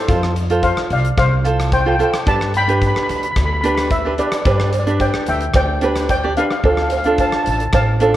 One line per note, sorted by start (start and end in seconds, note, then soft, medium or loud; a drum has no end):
0.00 0.60 A4 medium
0.00 0.62 C5 loud
0.08 0.71 F2 loud
0.08 0.33 F4 medium
0.08 0.34 A4 medium
0.08 0.34 C5 medium
0.08 kick loud
0.08 closed hi-hat medium
0.23 cross-stick medium
0.36 closed hi-hat medium
0.50 1.08 F4 medium
0.50 1.08 A4 medium
0.50 1.08 C5 medium
0.50 closed hi-hat medium
0.63 0.89 C5 medium
0.63 0.89 F5 medium
0.63 kick medium
0.63 closed hi-hat medium
0.77 cross-stick medium
0.90 1.11 C2 loud
0.90 1.17 D5 medium
0.90 1.17 F5 loud
0.90 closed hi-hat medium
1.05 closed hi-hat medium
1.18 2.00 C2 loud
1.18 1.69 C5 medium
1.18 1.75 F5 loud
1.18 kick loud
1.18 cross-stick medium
1.18 closed hi-hat medium
1.45 1.70 F4 medium
1.45 1.70 A4 medium
1.45 1.71 C5 medium
1.45 closed hi-hat medium
1.60 cross-stick medium
1.60 closed hi-hat medium
1.72 1.80 C5 medium
1.72 1.80 G5 loud
1.72 kick medium
1.72 closed hi-hat medium
1.81 1.87 G5 medium
1.86 1.95 F4 medium
1.86 1.95 A4 medium
1.86 1.95 C5 medium
1.86 1.93 G5 medium
1.95 2.02 G5 medium
1.99 2.17 F4 medium
1.99 2.17 A4 medium
1.99 2.17 C5 medium
1.99 closed hi-hat medium
2.03 2.09 G5 medium
2.10 2.18 G5 medium
2.10 cross-stick medium
2.10 closed hi-hat medium
2.26 2.89 G2 loud
2.26 2.51 D4 medium
2.26 2.52 G4 medium
2.26 2.52 B4 medium
2.26 2.53 D5 medium
2.26 2.56 A5 loud
2.26 kick loud
2.26 closed hi-hat medium
2.41 cross-stick medium
2.54 2.63 G5 medium
2.54 2.62 B5 loud
2.54 closed hi-hat medium
2.63 2.70 B5 medium
2.68 3.26 D4 medium
2.68 3.26 G4 medium
2.68 3.26 B4 medium
2.68 2.78 B5 medium
2.68 closed hi-hat medium
2.80 2.86 B5 medium
2.80 kick medium
2.80 closed hi-hat medium
2.87 2.93 B5 medium
2.95 3.01 B5 medium
2.95 cross-stick medium
3.03 3.08 B5 medium
3.09 3.30 D2 medium
3.09 3.16 B5 medium
3.09 closed hi-hat medium
3.17 3.23 B5 medium
3.23 3.30 B5 medium
3.23 closed hi-hat medium
3.31 3.36 B5 medium
3.36 4.19 D2 loud
3.36 3.44 B5 medium
3.36 kick loud
3.36 cross-stick medium
3.36 closed hi-hat medium
3.46 3.52 B5 medium
3.53 3.59 B5 medium
3.61 3.89 D4 medium
3.61 3.89 G4 medium
3.61 3.67 B5 medium
3.61 closed hi-hat medium
3.65 3.89 B4 medium
3.65 3.74 B5 medium
3.75 3.82 B5 medium
3.75 cross-stick medium
3.75 closed hi-hat medium
3.91 4.17 B4 medium
3.91 4.20 E5 medium
3.91 kick medium
3.91 closed hi-hat medium
4.05 4.13 D4 medium
4.05 4.14 G4 medium
4.05 4.14 B4 medium
4.18 4.35 D4 medium
4.18 4.36 G4 medium
4.18 4.26 B4 medium
4.18 4.36 B4 medium
4.18 4.26 D5 medium
4.18 closed hi-hat medium
4.27 4.34 D5 medium
4.32 4.41 D5 medium
4.32 cross-stick medium
4.32 closed hi-hat medium
4.42 5.08 G2 medium
4.42 4.70 D4 medium
4.42 4.48 D5 medium
4.42 kick loud
4.42 closed hi-hat medium
4.46 4.71 G4 medium
4.46 4.71 B4 medium
4.46 4.56 D5 medium
4.46 cowbell medium
4.58 4.63 D5 medium
4.58 cross-stick medium
4.64 4.69 D5 medium
4.70 4.78 D5 medium
4.70 closed hi-hat medium
4.74 cowbell medium
4.80 4.86 D5 medium
4.87 5.44 D4 medium
4.87 5.45 G4 medium
4.87 5.45 B4 medium
4.87 4.94 D5 medium
4.87 closed hi-hat medium
5.00 5.27 D5 medium
5.00 5.28 G5 medium
5.00 kick medium
5.00 closed hi-hat medium
5.00 cowbell medium
5.14 cross-stick medium
5.27 5.49 D2 medium
5.27 5.54 E5 medium
5.27 5.55 G5 medium
5.27 closed hi-hat medium
5.41 closed hi-hat medium
5.54 6.37 D2 loud
5.54 6.07 D5 medium
5.54 6.09 G5 loud
5.54 kick loud
5.54 cross-stick medium
5.54 closed hi-hat medium
5.54 cowbell loud
5.81 6.07 D4 medium
5.81 6.07 G4 medium
5.81 6.08 B4 medium
5.81 closed hi-hat medium
5.81 cowbell medium
5.95 cross-stick medium
5.95 closed hi-hat medium
6.09 6.23 D5 medium
6.09 6.22 G5 loud
6.09 kick medium
6.09 closed hi-hat medium
6.09 cowbell medium
6.23 6.31 D4 medium
6.23 6.32 G4 medium
6.23 6.32 D5 medium
6.37 6.54 D4 medium
6.37 6.54 G4 medium
6.37 6.55 B4 medium
6.37 6.45 D5 medium
6.37 6.43 F5 loud
6.37 closed hi-hat medium
6.44 6.51 F5 medium
6.50 6.58 F5 medium
6.50 cross-stick loud
6.50 closed hi-hat medium
6.59 6.65 F5 medium
6.63 7.26 D2 loud
6.63 6.89 D4 medium
6.63 6.89 F4 medium
6.63 6.89 A4 medium
6.63 6.72 F5 medium
6.63 kick loud
6.63 closed hi-hat medium
6.63 cowbell medium
6.73 6.81 F5 medium
6.77 cross-stick medium
6.82 6.88 F5 medium
6.89 6.96 F5 medium
6.89 closed hi-hat medium
6.89 cowbell medium
6.97 7.03 F5 medium
7.04 7.63 D4 medium
7.04 7.63 F4 medium
7.04 7.64 A4 medium
7.04 7.12 F5 medium
7.04 closed hi-hat medium
7.18 7.27 F5 medium
7.18 7.26 A5 medium
7.18 kick medium
7.18 closed hi-hat medium
7.18 cowbell medium
7.28 7.35 A5 medium
7.32 7.42 A5 medium
7.32 cross-stick medium
7.43 7.67 A1 loud
7.43 7.49 A5 medium
7.43 closed hi-hat medium
7.50 7.57 A5 medium
7.58 7.65 A5 medium
7.58 closed hi-hat medium
7.72 8.17 A1 loud
7.72 8.17 F5 medium
7.72 8.17 A5 loud
7.72 kick loud
7.72 cross-stick medium
7.72 closed hi-hat medium
7.72 cowbell medium
8.00 8.17 D4 medium
8.00 8.17 F4 medium
8.00 8.17 A4 medium
8.00 closed hi-hat medium
8.00 cowbell medium